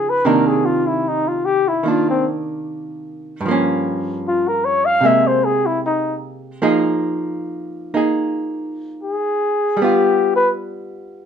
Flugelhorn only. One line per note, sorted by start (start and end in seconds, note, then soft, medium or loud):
0.00 0.11 G#4 medium
0.10 0.28 B4 medium
0.26 0.49 A#4 medium
0.47 0.67 G#4 medium
0.65 0.89 F4 medium
0.87 1.10 E4 medium
1.08 1.30 D#4 medium
1.28 1.47 F4 medium
1.45 1.70 G4 medium
1.68 1.90 E4 medium
1.88 2.10 F4 medium
2.10 2.26 C4 medium
4.28 4.50 F4 medium
4.48 4.67 A#4 medium
4.65 4.87 C#5 medium
4.86 5.08 F5 loud
5.07 5.29 E5 medium
5.28 5.46 C5 medium
5.45 5.68 G#4 medium
5.66 5.80 E4 medium
5.86 6.17 D#4 medium
9.03 9.84 G#4 medium
9.83 10.36 G4 medium
10.36 10.51 B4 medium